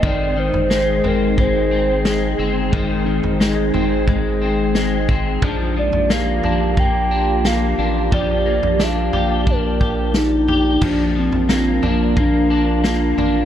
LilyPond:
<<
  \new Staff \with { instrumentName = "Soft synth lead" } { \time 4/4 \key bes \major \tempo 4 = 89 d''8 c''4 bes'8 c''4 aes'8. r16 | r1 | r8 d''8 f''4 g''4 f''4 | d''4 f''4 bes'4 ees'4 |
d'8 c'4 bes8 d'4 bes8. r16 | }
  \new Staff \with { instrumentName = "Ambient pad" } { \time 4/4 \key bes \major << { <aes ees'>1~ | <aes ees'>1 | g'1 | d''1 |
<d' f''>1 | } \\ { <aes' c''>1~ | <aes' c''>1 | <bes f'>1~ | <bes f'>1 |
<f' bes'>1 | } >> }
  \new Staff \with { instrumentName = "Clean electric guitar" } { \time 4/4 \key bes \major <ees c'>8 ees8 aes8 c'8 aes8 c'8 aes8 c'8 | <ees c'>8 ees8 aes8 c'8 aes8 c'8 aes8 c'8 | <f d'>8 f8 bes8 d'8 bes8 d'8 bes8 d'8 | <f g'>8 bes8 d'8 g'8 d'8 g'4 g'8 |
<f d'>8 f8 bes8 d'8 bes8 d'8 bes8 d'8 | }
  \new Staff \with { instrumentName = "Analog synth bass" } { \clef bass \time 4/4 \key bes \major aes,,8. aes,,8. aes,,2 g,,8 | aes,,8. aes,,8. aes,,2~ aes,,8 | bes,,8. bes,,8. bes,,2 a,,8 | bes,,8. bes,,8. bes,,2~ bes,,8 |
bes,,8. bes,,8. bes,,2 a,,8 | }
  \new DrumStaff \with { instrumentName = "Drums" } \drummode { \time 4/4 <bd tomfh>8. tomfh16 sn8 tomfh8 <bd tomfh>4 sn4 | <bd tomfh>8. tomfh16 sn8 tomfh8 <bd tomfh>4 sn8 bd8 | <bd tomfh>8. tomfh16 sn8 tomfh8 <bd tomfh>4 sn4 | <bd tomfh>8. tomfh16 sn8 tomfh8 <bd tomfh>8 bd8 sn8 tomfh8 |
<cymc bd tomfh>8. tomfh16 sn8 tomfh8 <bd tomfh>4 sn8 tomfh8 | }
>>